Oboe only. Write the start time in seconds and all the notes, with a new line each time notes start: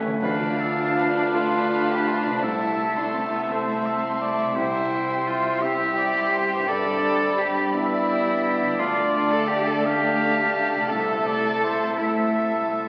0.22 B4
0.60 A4
0.98 B4
2.43 A4
3.52 C5
3.86 E5
4.21 D5
4.56 C5
5.62 E5
5.97 D5
6.32 C5
6.68 D5
7.76 E5
8.79 D5
9.86 F5
10.92 E5
11.26 D5
11.64 C5
11.98 A4